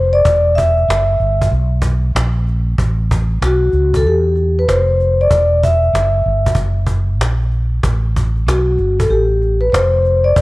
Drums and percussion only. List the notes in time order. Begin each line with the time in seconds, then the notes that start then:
0.25 cajon bass
0.58 cajon bass
0.77 cajon slap
0.90 cajon slap
1.20 cajon slap
1.42 cajon bass
1.53 cajon slap
1.82 cajon bass
2.16 cajon slap
2.47 cajon slap
2.78 cajon bass
3.11 cajon bass
3.30 cajon slap
3.42 cajon slap
3.72 cajon slap
3.94 cajon bass
4.05 cajon slap
4.36 cajon slap
4.69 cajon slap
5.00 cajon slap
5.31 cajon bass
5.63 cajon bass
5.83 cajon slap
5.95 cajon slap
6.46 cajon bass
6.55 cajon bass
6.87 cajon bass
7.21 cajon slap
7.42 cajon slap
7.52 cajon slap
7.83 cajon bass
8.16 cajon bass
8.36 cajon slap
8.48 cajon slap
8.78 cajon slap
9.00 cajon bass
9.11 cajon slap
9.42 cajon slap
9.74 cajon slap
10.05 cajon slap
10.36 cajon bass